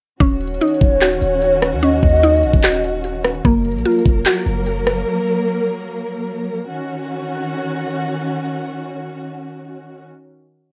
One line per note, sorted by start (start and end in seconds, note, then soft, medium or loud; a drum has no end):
0.20 0.59 D#1 loud
0.20 3.42 D#3 medium
0.20 1.82 C#4 loud
0.20 3.42 C#4 medium
0.20 3.42 F#4 medium
0.20 1.79 C#5 loud
0.20 kick loud
0.20 closed hi-hat medium
0.41 closed hi-hat medium
0.47 closed hi-hat medium
0.54 closed hi-hat medium
0.61 2.22 D#4 medium
0.61 closed hi-hat medium
0.68 closed hi-hat medium
0.74 closed hi-hat medium
0.81 1.20 D#1 loud
0.81 kick loud
0.81 closed hi-hat medium
1.01 2.63 F#4 medium
1.01 clap loud
1.01 closed hi-hat medium
1.22 1.74 D#1 loud
1.22 closed hi-hat medium
1.42 closed hi-hat medium
1.62 cross-stick medium
1.62 closed hi-hat medium
1.72 2.01 D#2 loud
1.72 closed hi-hat soft
1.82 3.45 C#4 loud
1.82 3.00 D#5 loud
1.82 closed hi-hat medium
2.03 2.45 D#2 loud
2.03 kick loud
2.03 closed hi-hat medium
2.03 open hi-hat medium
2.10 closed hi-hat medium
2.16 closed hi-hat medium
2.23 3.45 D#4 medium
2.23 closed hi-hat medium
2.30 closed hi-hat medium
2.37 closed hi-hat medium
2.43 2.53 A#1 loud
2.43 closed hi-hat medium
2.54 3.41 D#1 loud
2.54 kick medium
2.64 3.45 F#4 loud
2.64 clap loud
2.64 closed hi-hat medium
2.84 closed hi-hat medium
3.04 closed hi-hat medium
3.25 cross-stick medium
3.25 closed hi-hat medium
3.35 closed hi-hat soft
3.45 3.77 F#1 loud
3.45 6.66 F#3 medium
3.45 6.66 A#3 medium
3.45 5.88 A#3 loud
3.45 6.66 A#4 medium
3.45 kick loud
3.45 closed hi-hat medium
3.65 closed hi-hat medium
3.72 3.85 A#1 loud
3.72 closed hi-hat medium
3.79 closed hi-hat medium
3.85 6.29 F4 medium
3.85 closed hi-hat medium
3.92 closed hi-hat medium
3.99 closed hi-hat medium
4.05 4.25 F1 loud
4.05 kick loud
4.05 closed hi-hat medium
4.26 6.69 F#4 loud
4.26 clap loud
4.26 closed hi-hat medium
4.46 5.05 F#1 loud
4.46 closed hi-hat medium
4.66 closed hi-hat medium
4.87 cross-stick medium
4.87 closed hi-hat medium
4.97 closed hi-hat soft
6.69 10.04 D#3 medium
6.69 10.04 C#4 medium
6.69 10.04 F#4 medium